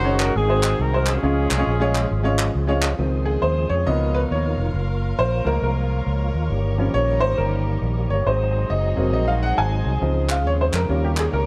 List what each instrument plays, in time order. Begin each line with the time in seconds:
Already playing: fingered electric bass F#1, upright piano G#2, tonewheel organ D#3 G#3 C#4 F#4 G#4, horn section D#4 F#4 C5
0.04 upright piano C#4 D#4 F#4 G#4 C#5
0.20 horn section A#4, clap
0.35 fingered electric bass G#1, upright piano G#2, tonewheel organ G#3 C4, horn section C4 D#4 G#4
0.48 upright piano C4 D#4 F#4 G#4 C5
0.63 clap
0.79 fingered electric bass C2, horn section A#4
0.93 upright piano C4 D#4 F#4 G#4 C5
1.06 horn section C#4 F4 G#4, clap
1.23 fingered electric bass C#2, upright piano C#3 G#3 C#4 F4 G#4 C#5, tonewheel organ C#3 F3 G#3 F4
1.51 fingered electric bass C2, clap
1.58 upright piano G#3 C#4 F4 G#4 C#5
1.67 fingered electric bass A#1
1.80 upright piano G#3 C#4 F4 G#4 C#5
1.95 clap
2.11 fingered electric bass G#1
2.23 upright piano G#3 C#4 F4 G#4 C#5
2.39 clap
2.55 fingered electric bass C#2
2.67 upright piano G#3 C#4 F4 G#4 C#5
2.82 clap
2.98 fingered electric bass C#2, string section C#3 F4 G#4 C5, upright piano D#3 F3 C4, tonewheel organ F3 G#3 C4 G#4
3.25 upright piano G#4
3.42 fingered electric bass D#2, upright piano C5
3.69 fingered electric bass F2, upright piano C#5
3.86 fingered electric bass C#2, tonewheel organ B2 D#3 F4 A#4, upright piano D#3 F3 A#3 B3 D#5, string section D#4 A#4 C#5 F5
4.14 upright piano B4
4.31 fingered electric bass D#2, upright piano C#5
4.58 fingered electric bass F1
4.74 fingered electric bass F#1, tonewheel organ A#3 F4 A#4, string section F4 C#5
5.19 fingered electric bass A#1, upright piano C5
5.45 fingered electric bass C#2, upright piano F3 G#3 A#3 A#4
5.62 fingered electric bass C2, upright piano A#4
6.07 fingered electric bass C#2
6.34 fingered electric bass D#2
6.50 fingered electric bass G1, tonewheel organ D#3 G3 G4, string section D#4 G4
6.78 upright piano F3 G3 C#4
6.94 fingered electric bass A#1, upright piano C#5
7.20 fingered electric bass G#1, upright piano C5
7.38 fingered electric bass G1, upright piano A#4
7.82 fingered electric bass A#1
8.09 fingered electric bass G1, upright piano C#5
8.26 fingered electric bass G#1, tonewheel organ F#3 G#3 C4 D#4 G#4, string section D#4 F#4 G#4 C5, upright piano C5
8.70 fingered electric bass F#1, upright piano D#5
8.96 fingered electric bass F1, upright piano F#3 A#3 C4
9.13 fingered electric bass A#1, upright piano D#5
9.28 upright piano F5
9.43 upright piano F#5
9.58 fingered electric bass G#1, upright piano G#5
9.85 fingered electric bass C2
10.01 fingered electric bass C#2, string section C#3 F4, tonewheel organ C#3 F3, upright piano F3 C4 D#4
10.29 upright piano F5, clap
10.46 fingered electric bass D#2, upright piano C#5
10.61 upright piano C5
10.73 fingered electric bass F2, upright piano A#4, clap
10.89 fingered electric bass D#2, tonewheel organ D#3 G3 A#3 G4, upright piano G3 C#4 F4, string section D#4 G4 A#4 C#5
11.04 upright piano G4
11.17 upright piano G#4, clap
11.33 fingered electric bass C#2, upright piano A#4